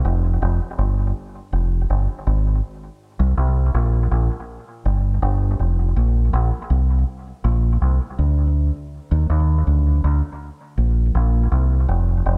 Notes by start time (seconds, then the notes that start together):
0.05 F1
0.42 F1
0.79 G1
1.53 F1
1.90 G1
2.27 G#1
3.19 C2
3.37 C2
3.74 A#1
4.11 A#1
4.85 G1
5.22 G1
5.59 F1
5.96 A#1
6.33 A#1
6.70 C2
7.44 A#1
7.82 C2
8.19 D2
9.11 D#2
9.30 D#2
9.67 D2
10.04 D2
10.78 A#1
11.15 A#1
11.52 C2
11.89 F1
12.26 F1